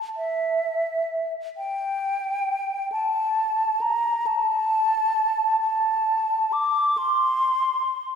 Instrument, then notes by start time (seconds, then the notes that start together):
flute
0.17 E5
1.57 G5
2.92 A5
3.81 A#5
4.27 A5
5.60 A5
6.53 D6
6.98 C6